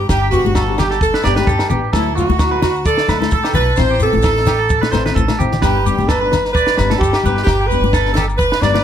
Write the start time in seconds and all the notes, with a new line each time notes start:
0.09 G1 G4, kick, snare, low agogo, shekere
0.22 G4
0.31 B3 D4 F#4 G4, shekere
0.45 G1 D4 G4, high conga, shekere
0.55 A4, kick, snare, low agogo, shekere
0.68 D4 G4
0.78 G4, snare, low conga, low agogo, shekere
0.90 A4, snare, shekere
1.01 A4, kick, shekere
1.14 B4, snare
1.24 G1 B3 D4 G4 D5, snare, low agogo, shekere
1.28 G4
1.36 G4 B4, snare, high conga
1.41 D4
1.47 G1 A4, kick, shekere
1.59 snare, low agogo
1.70 A1 B3 D4 G4, low conga, shekere
1.75 G4
1.93 D2 F#3 A3 E4 A4, muted nylon-string guitar stroke, kick, snare, low agogo, shekere
2.15 F#3 A3 F#4, shekere
2.21 E4
2.28 D2 A3 E4, high conga, shekere
2.39 F#4, kick, snare, low agogo, shekere
2.51 A3 E4 B4
2.62 F#4, snare, low conga, low agogo, shekere
2.75 shekere
2.86 A4 D5, kick, shekere
2.97 snare
3.08 D2 F#3 A3 E4 B4, snare, low agogo, shekere
3.20 A3 E4 A4, snare, high conga
3.30 D2 A4, kick, shekere
3.43 G4, snare, low agogo
3.53 B1 F#3 A3 E4 A4 B4, low conga, shekere
3.76 A1 E3 C4 E4 C5, kick, snare, low agogo, shekere
3.90 G4
4.00 E3 C4 A4, shekere
4.04 E4
4.13 A1 C4 E4, high conga, shekere
4.22 A4, kick, snare, low agogo, shekere
4.36 C4 E4, snare
4.46 G4, snare, low conga, low agogo, shekere
4.59 A4
4.69 kick, shekere
4.81 B4, snare, high conga
4.92 A1 E3 C4 E4 C5, snare, high conga, low agogo, shekere
5.05 C4 E4 B4, snare, low conga, shekere
5.15 A1 A4, kick, high conga, shekere
5.28 snare, high conga, low agogo
5.37 A1 C4 E4 G4, muted nylon-string guitar stroke, low conga, shekere
5.51 snare, low conga, shekere
5.61 G1 G3 B3 D4 G4 B4, kick, snare, low agogo, shekere
5.85 G3 B3 D4 G4, shekere
5.97 G1 B3 D4, high conga, shekere
6.08 A4 B4, kick, snare, low agogo, shekere
6.21 B3 D4 B4
6.32 snare, low conga, low agogo, shekere
6.45 snare, shekere
6.52 B4 D5, kick
6.57 shekere
6.67 snare
6.77 G1 G3 B3 B4, snare, low agogo, shekere
6.82 D4
6.90 D4 A4, snare, high conga
6.94 B3
6.98 G1 G4, kick
7.03 shekere
7.13 G4, snare, low agogo
7.24 G1 G3 B3 B4, low conga, shekere
7.28 D4
7.37 snare
7.43 G1 G4, kick, snare
7.48 low agogo, shekere
7.61 G4
7.66 B4
7.71 G3 B3 D4, shekere
7.81 G1 B3 D4, high conga, shekere
7.93 A4, kick, snare, low agogo, shekere
8.05 B3 D4, snare
8.13 G4 A4, snare, low conga, low agogo, shekere
8.28 muted clean electric guitar stroke, shekere
8.37 B4, kick, shekere
8.52 B4, snare
8.61 G1 G3 B3 D4 D5, snare, low agogo, shekere
8.74 B3 D4 B4, snare, high conga